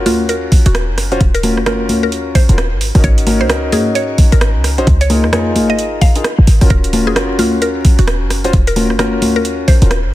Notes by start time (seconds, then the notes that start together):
Already playing: C#4 F4 F#4 A#4
0.06 D#2 F4, open hi-hat, high conga
0.29 A#4, closed hi-hat
0.52 kick, open hi-hat
0.66 D#1 F#4, closed hi-hat
0.75 cross-stick, closed hi-hat
0.89 F#1
0.98 cross-stick, open hi-hat
1.12 D#1 C#4 F4 F#4 C5, closed hi-hat
1.21 D#1, kick, closed hi-hat
1.34 A#4, closed hi-hat
1.43 C#4 F4 F#4 A#4, open hi-hat, high conga
1.57 F#1, cross-stick
1.66 C#4 F4 F#4 A#4, cross-stick, closed hi-hat, high conga
1.89 D#2, open hi-hat, high conga
2.03 A#4
2.12 closed hi-hat
2.35 C5, kick, open hi-hat
2.49 D#1 C#4 F4 F#4 A#4, closed hi-hat
2.58 cross-stick, closed hi-hat
2.72 G#1
2.81 open hi-hat
2.95 G#1 C#4 D#4 F#4 A#4, cross-stick, open hi-hat
3.04 G#1 C#5, kick, closed hi-hat
3.18 closed hi-hat
3.27 C#4 D#4 F#4 A#4, open hi-hat, high conga
3.41 C#2 C5, cross-stick
3.49 C#4 D#4 F#4 A#4, cross-stick, closed hi-hat
3.72 G#2 G#4, open hi-hat, high conga
3.95 C#5, closed hi-hat
4.18 kick, open hi-hat
4.32 G#1 A#4, closed hi-hat
4.41 cross-stick, closed hi-hat
4.55 C#2
4.64 cross-stick, open hi-hat
4.78 G#1 C#4 D#4 F#4 C5, closed hi-hat
4.87 C#2, kick, closed hi-hat
5.01 C#5, closed hi-hat
5.10 D#4 F4 G#4 A#4, open hi-hat, high conga
5.24 F2, cross-stick
5.33 D#4 F4 G#4 A#4 C#5, cross-stick, closed hi-hat, high conga
5.56 G#1, open hi-hat, high conga
5.70 D#5
5.79 closed hi-hat
6.01 F5, kick, open hi-hat
6.15 D#4 F4 G#4 A#4, closed hi-hat
6.24 cross-stick, closed hi-hat
6.38 G#1
6.47 G#1, open hi-hat
6.61 G#1 C#4 F4 F#4 A#4, cross-stick, open hi-hat
6.70 D#1 A#4, kick, closed hi-hat
6.84 closed hi-hat
6.93 C#4 F4 F#4 A#4, open hi-hat, high conga
7.07 F#1 G#4, cross-stick
7.16 C#4 F4 F#4 A#4, cross-stick, closed hi-hat
7.39 D#2 F4, open hi-hat, high conga
7.62 A#4, closed hi-hat
7.85 kick, open hi-hat
7.99 D#1 F#4, closed hi-hat
8.07 cross-stick, closed hi-hat
8.22 F#1
8.30 cross-stick, open hi-hat
8.44 D#1 C#4 F4 F#4 C5, closed hi-hat
8.53 D#1, kick, closed hi-hat
8.67 A#4, closed hi-hat
8.76 C#4 F4 F#4 A#4, open hi-hat, high conga
8.90 F#1, cross-stick
8.99 C#4 F4 F#4 A#4, cross-stick, closed hi-hat, high conga
9.22 D#2, open hi-hat, high conga
9.36 A#4
9.45 closed hi-hat
9.68 C5, kick, open hi-hat
9.82 D#1 C#4 F4 F#4 A#4, closed hi-hat
9.91 cross-stick, closed hi-hat
10.05 G#1